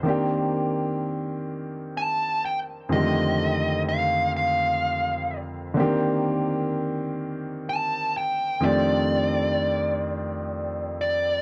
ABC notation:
X:1
M:6/8
L:1/8
Q:3/8=42
K:Cdor
V:1 name="Lead electric guitar"
z4 a g | e2 f f2 z | z4 a g | d4- d d |]
V:2 name="Grand piano"
[E,B,CDG]6 | [F,,D,E,_A,=A,CG]6 | [D,E,B,CDG]6 | [F,,E,A,CDG]6 |]